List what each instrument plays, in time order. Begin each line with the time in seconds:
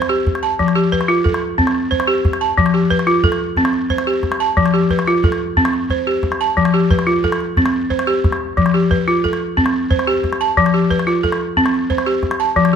Already playing: balafon C5
0.02 calabash click
0.09 balafon G4, calabash click
0.27 calabash thump
0.35 calabash click
0.43 balafon A5, calabash click
0.59 balafon F3, calabash thump
0.68 calabash click
0.75 balafon G4
0.92 balafon B4, calabash thump
1.01 calabash click
1.08 balafon F4, calabash click
1.24 balafon A4, calabash thump
1.34 calabash click
1.58 balafon C4, calabash thump
1.67 calabash click
1.75 calabash click
1.91 balafon C5, calabash thump
2.00 calabash click
2.07 balafon G4
2.25 calabash thump, calabash click
2.33 calabash click
2.41 balafon A5
2.58 balafon F3, calabash thump
2.66 calabash click
2.74 balafon G4
2.90 balafon B4, calabash thump
2.99 calabash click
3.07 balafon F4, calabash click
3.24 balafon A4, calabash thump
3.32 calabash click
3.57 balafon C4, calabash thump
3.65 calabash click
3.73 calabash click
3.90 balafon C5, calabash thump
3.98 calabash click
4.07 balafon G4
4.23 calabash thump, calabash click
4.32 calabash click
4.40 balafon A5
4.57 balafon F3, calabash thump
4.66 calabash click
4.74 balafon G4
4.90 balafon B4, calabash thump
4.99 calabash click
5.07 balafon F4, calabash click
5.24 balafon A4, calabash thump
5.32 calabash click
5.57 balafon C4, calabash thump
5.65 calabash click
5.73 calabash click
5.90 balafon C5, calabash thump
6.07 balafon G4
6.23 calabash thump, calabash click
6.32 calabash click
6.41 balafon A5
6.57 balafon F3, calabash thump
6.65 calabash click
6.74 balafon G4
6.91 balafon B4, calabash thump, calabash click
6.99 calabash click
7.07 balafon F4
7.24 balafon A4, calabash thump
7.32 calabash click
7.40 calabash click
7.57 balafon C4, calabash thump, calabash click
7.66 calabash click
7.74 calabash click
7.90 balafon C5, calabash thump
7.99 calabash click
8.07 balafon G4, calabash click
8.24 calabash thump, calabash click
8.32 calabash click
8.57 balafon F3, calabash thump
8.66 calabash click
8.74 balafon G4
8.91 balafon B4, calabash thump
9.08 balafon F4, calabash click
9.24 balafon A4, calabash thump
9.33 calabash click
9.57 balafon C4, calabash thump
9.66 calabash click
9.74 calabash click
9.91 balafon C5, calabash thump
9.99 calabash click
10.07 balafon G4
10.24 calabash thump, calabash click
10.33 calabash click
10.41 balafon A5
10.57 balafon F3, calabash thump
10.66 calabash click
10.74 balafon G4
10.91 balafon B4, calabash thump
10.99 calabash click
11.07 balafon F4, calabash click
11.23 balafon A4, calabash thump
11.32 calabash click
11.57 balafon C4, calabash thump
11.66 calabash click
11.74 calabash click
11.90 balafon C5, calabash thump
11.98 calabash click
12.06 balafon G4
12.23 calabash thump, calabash click
12.31 calabash click
12.40 balafon A5
12.56 balafon F3, calabash thump
12.65 calabash click